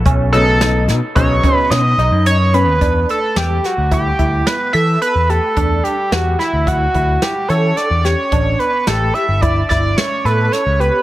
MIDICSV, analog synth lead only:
0, 0, Header, 1, 2, 480
1, 0, Start_track
1, 0, Tempo, 550964
1, 49, Time_signature, 5, 2, 24, 8
1, 9606, End_track
2, 0, Start_track
2, 0, Title_t, "Analog synth lead"
2, 0, Program_c, 0, 81
2, 282, Note_on_c, 0, 69, 122
2, 731, Note_off_c, 0, 69, 0
2, 1004, Note_on_c, 0, 73, 94
2, 1352, Note_off_c, 0, 73, 0
2, 1352, Note_on_c, 0, 71, 94
2, 1484, Note_on_c, 0, 75, 114
2, 1497, Note_off_c, 0, 71, 0
2, 1966, Note_off_c, 0, 75, 0
2, 1970, Note_on_c, 0, 73, 92
2, 2211, Note_on_c, 0, 71, 92
2, 2224, Note_off_c, 0, 73, 0
2, 2690, Note_off_c, 0, 71, 0
2, 2701, Note_on_c, 0, 69, 90
2, 2941, Note_on_c, 0, 67, 86
2, 2954, Note_off_c, 0, 69, 0
2, 3182, Note_on_c, 0, 66, 75
2, 3195, Note_off_c, 0, 67, 0
2, 3415, Note_off_c, 0, 66, 0
2, 3425, Note_on_c, 0, 67, 89
2, 3889, Note_on_c, 0, 71, 91
2, 3902, Note_off_c, 0, 67, 0
2, 4116, Note_off_c, 0, 71, 0
2, 4121, Note_on_c, 0, 76, 98
2, 4347, Note_off_c, 0, 76, 0
2, 4370, Note_on_c, 0, 71, 91
2, 4613, Note_on_c, 0, 69, 93
2, 4626, Note_off_c, 0, 71, 0
2, 5084, Note_on_c, 0, 67, 86
2, 5097, Note_off_c, 0, 69, 0
2, 5330, Note_on_c, 0, 66, 84
2, 5343, Note_off_c, 0, 67, 0
2, 5560, Note_off_c, 0, 66, 0
2, 5565, Note_on_c, 0, 64, 80
2, 5815, Note_on_c, 0, 66, 88
2, 5828, Note_off_c, 0, 64, 0
2, 6295, Note_on_c, 0, 67, 86
2, 6308, Note_off_c, 0, 66, 0
2, 6520, Note_on_c, 0, 73, 94
2, 6533, Note_off_c, 0, 67, 0
2, 6764, Note_on_c, 0, 74, 92
2, 6778, Note_off_c, 0, 73, 0
2, 7009, Note_on_c, 0, 73, 88
2, 7022, Note_off_c, 0, 74, 0
2, 7484, Note_on_c, 0, 71, 90
2, 7498, Note_off_c, 0, 73, 0
2, 7728, Note_on_c, 0, 69, 99
2, 7741, Note_off_c, 0, 71, 0
2, 7961, Note_on_c, 0, 76, 85
2, 7974, Note_off_c, 0, 69, 0
2, 8200, Note_on_c, 0, 74, 90
2, 8213, Note_off_c, 0, 76, 0
2, 8436, Note_off_c, 0, 74, 0
2, 8441, Note_on_c, 0, 74, 80
2, 8685, Note_on_c, 0, 73, 92
2, 8698, Note_off_c, 0, 74, 0
2, 8930, Note_on_c, 0, 71, 92
2, 8943, Note_off_c, 0, 73, 0
2, 9167, Note_on_c, 0, 73, 91
2, 9180, Note_off_c, 0, 71, 0
2, 9409, Note_on_c, 0, 71, 87
2, 9422, Note_off_c, 0, 73, 0
2, 9606, Note_off_c, 0, 71, 0
2, 9606, End_track
0, 0, End_of_file